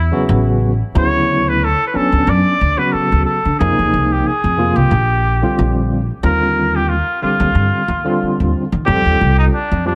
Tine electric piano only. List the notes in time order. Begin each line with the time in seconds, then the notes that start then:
0.11 C#3 F#3 B3 F#4
0.94 C#3 F#3 B3 E4
1.94 F#3 B3 C#4 D4
2.77 C#3 F#3 B3 F#4
3.60 C3 F3 A#3 D#4
4.57 C3 F3 A#3 F4
5.42 D3 G3 C4 F4
6.23 D3 G3 C4 F4
7.22 D3 G3 C4 G4
8.04 D3 G3 C4 F4
8.86 G3 C4 F4 A4
9.86 G3 C4 F4 G4